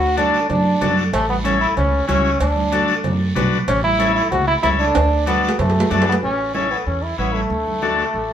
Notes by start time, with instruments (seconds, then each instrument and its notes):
Already playing: upright bass D2, trombone F#4
0.17 transistor combo organ D4 F#4 A4, trombone D4, cowbell, high conga, short guiro
0.34 short guiro
0.50 upright bass F#2, trombone D4, cowbell, low conga, long guiro
0.81 upright bass F#2, transistor combo organ D4 F#4 A4, cowbell, high conga, low conga, low timbale, short guiro
0.97 short guiro
1.13 upright bass A1, trombone A3, cowbell, long guiro
1.29 trombone B3, high conga
1.44 transistor combo organ C#4 E4 A4, trombone C#4, cowbell, high conga, short guiro
1.61 trombone E4, short guiro
1.77 upright bass C#2, trombone C#4, cowbell, low conga, long guiro
2.08 upright bass C#2, transistor combo organ C#4 E4 F#4, trombone C#4, cowbell, high conga, short guiro
2.25 short guiro
2.40 upright bass D2, trombone D4, cowbell, long guiro
2.56 high conga
2.72 transistor combo organ D4 F#4 A4, cowbell, high conga, short guiro
2.88 short guiro
3.03 upright bass F#2, cowbell, low conga, long guiro
3.35 upright bass B1, transistor combo organ D4 F#4 B4, cowbell, high conga, low conga, low timbale, short guiro
3.52 short guiro
3.68 upright bass A1, trombone C#4, cowbell, long guiro
3.84 trombone E4, high conga
3.99 transistor combo organ C#4 E4 A4, cowbell, high conga, short guiro
4.15 trombone E4, short guiro
4.31 upright bass C#2, trombone F#4, cowbell, low conga, long guiro
4.47 trombone E4
4.63 upright bass C#2, transistor combo organ C#4 E4 A4, trombone E4, cowbell, high conga, low timbale, short guiro
4.79 trombone D4, short guiro
4.95 upright bass D2, cowbell, high timbale, long guiro
5.26 trombone B3, transistor combo organ D4 F#4 A4, cowbell, high conga, short guiro
5.43 short guiro
5.49 low timbale
5.59 upright bass F#2, trombone A3, cowbell, low conga, low timbale, long guiro
5.70 low timbale
5.80 low timbale
5.90 upright bass F#2, trombone A3, transistor combo organ D4 F#4 A4, cowbell, high conga, short guiro
6.02 low timbale
6.07 trombone B3, short guiro
6.12 low timbale
6.23 upright bass A1, trombone C#4, high conga, long guiro
6.54 transistor combo organ C#4 E4 A4, trombone C#4, high conga, short guiro
6.71 trombone B3, short guiro
6.86 upright bass E2, trombone C#4, long guiro
7.03 trombone E4, high conga
7.18 upright bass A1, trombone B3, transistor combo organ C#4 E4 B4, high conga, short guiro
7.34 trombone A3, high conga, short guiro
7.50 upright bass D2, high conga, long guiro
7.66 high conga
7.82 transistor combo organ D4 F#4 A4, high conga, short guiro
7.98 short guiro
8.14 upright bass A1, long guiro